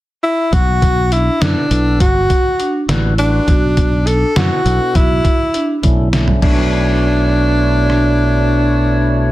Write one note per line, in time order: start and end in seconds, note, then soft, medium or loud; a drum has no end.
0.23 0.55 E4 medium
0.52 1.28 B1 medium
0.52 0.93 F#4 medium
0.52 1.14 F#4 medium
0.52 kick medium
0.52 closed hi-hat medium
0.82 kick medium
0.82 closed hi-hat medium
1.11 1.32 D4 medium
1.11 1.44 E4 medium
1.11 closed hi-hat medium
1.41 1.54 F#2 medium
1.41 1.67 B2 medium
1.41 1.67 B3 soft
1.41 1.67 D4 medium
1.41 2.00 D4 medium
1.41 1.82 E4 medium
1.41 1.67 A4 medium
1.41 snare medium
1.41 closed hi-hat medium
1.70 2.00 B1 medium
1.70 2.00 B2 medium
1.70 2.00 B3 medium
1.70 2.00 D4 medium
1.70 2.01 A4 medium
1.70 closed hi-hat medium
2.00 2.25 G1 medium
2.00 2.41 F#4 medium
2.00 2.85 F#4 medium
2.00 kick loud
2.00 closed hi-hat medium
2.30 kick medium
2.30 closed hi-hat medium
2.59 2.80 D4 medium
2.59 closed hi-hat medium
2.88 3.39 A1 medium
2.88 3.14 G3 medium
2.88 3.14 D4 medium
2.88 3.30 E4 medium
2.88 3.15 F#4 medium
2.88 3.15 B4 medium
2.88 snare medium
2.88 closed hi-hat medium
3.18 3.48 G3 medium
3.18 3.48 D4 medium
3.18 4.08 D4 medium
3.18 3.48 F#4 medium
3.18 3.48 B4 medium
3.18 closed hi-hat medium
3.47 4.23 B1 medium
3.47 3.89 F#4 medium
3.47 kick medium
3.47 closed hi-hat medium
3.77 kick medium
3.77 closed hi-hat medium
4.07 4.27 D4 medium
4.07 4.38 A4 medium
4.07 closed hi-hat medium
4.35 4.49 F#2 medium
4.35 4.61 B2 medium
4.35 4.62 B3 medium
4.35 4.62 D4 medium
4.35 4.77 E4 medium
4.35 4.97 F#4 medium
4.35 4.62 A4 medium
4.35 snare loud
4.35 closed hi-hat medium
4.64 4.78 B1 medium
4.64 4.95 B2 medium
4.64 4.95 B3 medium
4.64 4.95 D4 medium
4.64 4.95 A4 medium
4.64 closed hi-hat soft
4.95 5.20 B1 medium
4.95 5.84 E4 medium
4.95 5.36 F#4 medium
4.95 kick loud
4.95 closed hi-hat medium
5.25 kick medium
5.25 closed hi-hat medium
5.54 5.74 D4 medium
5.54 closed hi-hat medium
5.83 6.34 B1 medium
5.83 6.09 B2 medium
5.83 6.09 A3 medium
5.83 6.09 C#4 medium
5.83 6.09 D4 medium
5.83 6.24 E4 medium
5.83 6.09 E4 medium
5.83 kick soft
5.83 closed hi-hat medium
6.12 6.41 B2 medium
6.12 6.41 A3 medium
6.12 6.42 C#4 medium
6.12 6.41 D4 medium
6.12 6.41 E4 medium
6.12 snare medium
6.12 closed hi-hat medium
6.28 floor tom medium
6.42 9.32 B1 medium
6.42 9.32 B2 medium
6.42 9.32 A3 medium
6.42 9.32 B3 medium
6.42 9.32 D4 medium
6.42 9.32 E4 medium
6.42 9.32 C#5 medium
6.42 kick loud
6.42 crash medium
6.46 9.32 D4 medium
6.46 9.32 F#4 medium
6.54 9.32 B4 medium
7.90 cross-stick medium